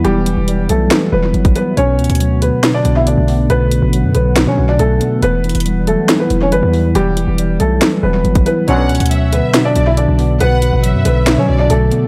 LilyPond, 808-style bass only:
\new Staff \with { instrumentName = "808-style bass" } { \clef bass \time 4/4 \key b \minor \tempo 4 = 139 e,,8. e,,8. b,,8 r8 e,,8 g,,8 r8 | b,,8 cis,16 d,4 r8. b,,8. b,,8. | b,,8. a,,8 fis,16 b,,8. fis16 b,,8 b,,8 r8 | e,,8. e,,4 r8. e,,8 g,,16 e,8. |
e,,8. e,,8. b,,8 r8 e,,8 g,,8 r8 | b,,8 cis,16 d,4 r8. b,,8. b,,8. | b,,8. a,,8 fis,16 b,,8. fis16 b,,8 b,,8 r8 | }